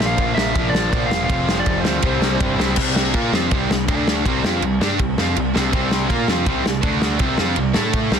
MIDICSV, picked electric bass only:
0, 0, Header, 1, 2, 480
1, 0, Start_track
1, 0, Key_signature, 0, "major"
1, 0, Tempo, 369231
1, 1686, Time_signature, 4, 2, 24, 8
1, 10653, End_track
2, 0, Start_track
2, 0, Title_t, "Picked electric bass"
2, 0, Program_c, 0, 34
2, 0, Note_on_c, 0, 34, 89
2, 203, Note_off_c, 0, 34, 0
2, 231, Note_on_c, 0, 34, 90
2, 438, Note_off_c, 0, 34, 0
2, 467, Note_on_c, 0, 34, 94
2, 677, Note_off_c, 0, 34, 0
2, 714, Note_on_c, 0, 34, 88
2, 921, Note_off_c, 0, 34, 0
2, 946, Note_on_c, 0, 34, 99
2, 1156, Note_off_c, 0, 34, 0
2, 1195, Note_on_c, 0, 34, 91
2, 1402, Note_off_c, 0, 34, 0
2, 1421, Note_on_c, 0, 28, 92
2, 1634, Note_off_c, 0, 28, 0
2, 1690, Note_on_c, 0, 29, 97
2, 2095, Note_off_c, 0, 29, 0
2, 2165, Note_on_c, 0, 29, 87
2, 2363, Note_off_c, 0, 29, 0
2, 2371, Note_on_c, 0, 38, 85
2, 2589, Note_off_c, 0, 38, 0
2, 2649, Note_on_c, 0, 36, 92
2, 2838, Note_off_c, 0, 36, 0
2, 2846, Note_on_c, 0, 36, 93
2, 3067, Note_off_c, 0, 36, 0
2, 3123, Note_on_c, 0, 31, 83
2, 3329, Note_off_c, 0, 31, 0
2, 3358, Note_on_c, 0, 36, 89
2, 3566, Note_off_c, 0, 36, 0
2, 3607, Note_on_c, 0, 36, 100
2, 4055, Note_off_c, 0, 36, 0
2, 4080, Note_on_c, 0, 46, 98
2, 4308, Note_off_c, 0, 46, 0
2, 4322, Note_on_c, 0, 41, 91
2, 4549, Note_off_c, 0, 41, 0
2, 4569, Note_on_c, 0, 36, 100
2, 4793, Note_off_c, 0, 36, 0
2, 4805, Note_on_c, 0, 36, 81
2, 5031, Note_off_c, 0, 36, 0
2, 5044, Note_on_c, 0, 38, 97
2, 5494, Note_off_c, 0, 38, 0
2, 5536, Note_on_c, 0, 36, 97
2, 5757, Note_off_c, 0, 36, 0
2, 5765, Note_on_c, 0, 41, 100
2, 5986, Note_off_c, 0, 41, 0
2, 5994, Note_on_c, 0, 36, 83
2, 6225, Note_off_c, 0, 36, 0
2, 6236, Note_on_c, 0, 43, 93
2, 6466, Note_off_c, 0, 43, 0
2, 6490, Note_on_c, 0, 36, 85
2, 6714, Note_off_c, 0, 36, 0
2, 6726, Note_on_c, 0, 41, 88
2, 6952, Note_off_c, 0, 41, 0
2, 6974, Note_on_c, 0, 36, 82
2, 7195, Note_off_c, 0, 36, 0
2, 7228, Note_on_c, 0, 36, 104
2, 7443, Note_off_c, 0, 36, 0
2, 7453, Note_on_c, 0, 36, 116
2, 7897, Note_off_c, 0, 36, 0
2, 7925, Note_on_c, 0, 46, 100
2, 8150, Note_off_c, 0, 46, 0
2, 8159, Note_on_c, 0, 41, 92
2, 8386, Note_off_c, 0, 41, 0
2, 8396, Note_on_c, 0, 36, 90
2, 8624, Note_off_c, 0, 36, 0
2, 8645, Note_on_c, 0, 36, 83
2, 8869, Note_off_c, 0, 36, 0
2, 8880, Note_on_c, 0, 38, 94
2, 9329, Note_off_c, 0, 38, 0
2, 9359, Note_on_c, 0, 36, 111
2, 9584, Note_off_c, 0, 36, 0
2, 9591, Note_on_c, 0, 41, 102
2, 9820, Note_off_c, 0, 41, 0
2, 9845, Note_on_c, 0, 36, 89
2, 10067, Note_off_c, 0, 36, 0
2, 10077, Note_on_c, 0, 45, 92
2, 10524, Note_off_c, 0, 45, 0
2, 10541, Note_on_c, 0, 36, 89
2, 10653, Note_off_c, 0, 36, 0
2, 10653, End_track
0, 0, End_of_file